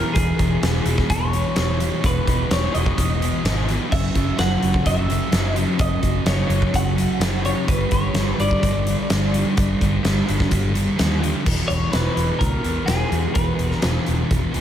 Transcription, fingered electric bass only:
0.16 0.32 E1 medium
0.39 0.55 E1 medium
0.63 0.79 E1 loud
0.85 1.02 E1 loud
1.10 1.42 E1 loud
1.57 1.89 E1 medium
2.04 2.20 E1 medium
2.28 2.43 E1 medium
2.51 2.67 E1 loud
2.75 2.91 E1 loud
2.98 3.30 E1 loud
3.44 3.77 G#1 loud
3.92 4.08 F#1 medium
4.15 4.31 F#1 medium
4.39 4.55 F#1 loud
4.63 4.79 F#1 loud
4.86 5.19 F#1 loud
5.33 5.65 F#1 loud
5.80 5.96 F#1 medium
6.03 6.20 F#1 medium
6.26 6.42 F#1 loud
6.49 6.66 F#1 loud
6.74 7.07 F#1 loud
7.20 7.53 F#1 medium
7.69 7.85 G1 medium
7.92 8.08 G1 medium
8.14 8.31 G1 loud
8.39 8.56 G1 medium
8.63 8.95 G1 loud
9.11 9.43 G1 medium
9.58 9.74 G1 medium
9.82 9.98 G1 medium
10.05 10.21 G1 medium
10.29 10.45 G1 loud
10.52 10.85 G1 loud
11.00 11.32 D#2 medium
11.47 11.61 E1 medium
11.70 11.84 E1 medium
11.93 12.08 E1 loud
12.17 12.31 E1 medium
12.41 12.55 C#2 loud
12.64 12.79 E2 medium
12.88 13.02 E1 loud
13.11 13.26 E2 medium
13.36 13.50 E1 medium
13.59 13.73 E1 medium
13.84 13.98 E1 medium
14.08 14.22 E1 medium
14.31 14.45 E1 loud
14.55 14.61 E1 medium

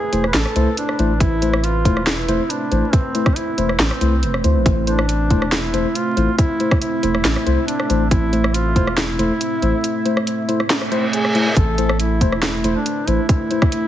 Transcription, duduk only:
0.00 0.27 G#4 loud
0.28 0.36 B4 medium
0.34 0.77 A4 loud
0.78 1.18 D4 loud
1.21 1.65 E4 loud
1.64 2.08 F4 loud
2.07 2.52 E4 loud
2.50 2.95 D4 loud
2.93 3.38 C4 loud
3.37 3.79 E4 medium
3.80 4.40 C4 medium
4.87 5.53 D4 loud
5.52 5.96 E4 loud
5.95 6.37 F4 loud
6.38 6.78 E4 loud
6.81 7.64 E4 loud
7.67 8.08 D4 loud
8.11 8.55 E4 loud
8.54 8.99 F4 loud
8.97 10.86 E4 loud
11.13 11.58 G#4 loud
11.57 11.99 A4 loud
12.00 12.40 E4 loud
12.43 12.73 E4 loud
12.76 13.09 D4 loud
13.08 13.29 E4 loud
13.29 13.88 E4 loud

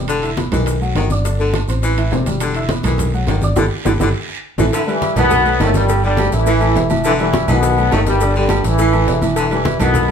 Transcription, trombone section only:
4.75 4.82 E3 medium
4.75 4.81 E4 medium
4.89 5.16 E3 loud
4.89 5.15 E4 medium
5.17 5.57 B2 loud
5.17 5.58 B3 loud
5.61 5.74 A2 medium
5.61 5.75 A3 loud
5.75 6.02 G2 medium
5.75 6.03 G3 loud
6.04 6.31 G2 medium
6.04 6.31 G3 loud
6.34 6.91 E3 loud
6.34 6.87 E4 medium
7.06 7.12 E3 loud
7.06 7.13 E4 medium
7.20 7.47 E3 medium
7.20 7.47 E4 medium
7.50 7.93 B2 loud
7.50 7.93 B3 loud
7.94 8.00 A2 medium
7.94 8.00 A3 loud
8.07 8.34 G2 medium
8.07 8.34 G3 medium
8.37 8.63 G2 medium
8.37 8.63 G3 loud
8.66 9.23 E3 loud
8.66 9.23 E4 medium
9.37 9.44 E3 medium
9.37 9.44 E4 medium
9.51 9.78 E3 medium
9.51 9.79 E4 medium
9.81 10.11 B2 medium
9.81 10.11 B3 loud

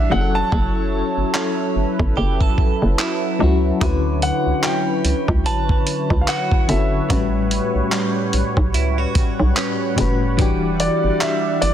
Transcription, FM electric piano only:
0.10 1.43 F#3 medium
0.10 1.44 C#4 medium
0.10 1.45 E4 medium
0.14 0.20 G#4 medium
0.21 1.49 A4 medium
3.39 3.70 F#3 medium
3.39 3.70 C#4 medium
3.39 3.71 E4 medium
3.44 3.72 F#4 medium
3.81 4.94 D3 medium
3.81 4.95 C#4 medium
3.81 4.95 E4 medium
3.81 4.96 F#4 medium
3.85 4.96 B4 medium
6.68 6.98 D3 medium
6.68 6.99 C#4 medium
6.68 6.99 E4 medium
6.68 7.00 F#4 medium
6.72 7.00 A4 medium
7.09 8.22 A2 medium
7.09 8.23 G3 medium
7.09 8.23 C#4 medium
7.09 8.24 F#4 medium
7.13 8.24 B4 medium
9.96 10.27 A2 medium
9.96 10.27 G3 medium
9.96 10.28 C#4 medium
9.96 10.28 F#4 medium
10.00 10.29 B4 loud
10.37 11.51 E3 medium
10.37 11.52 D4 medium
10.37 11.52 F#4 medium
10.41 11.53 G4 loud

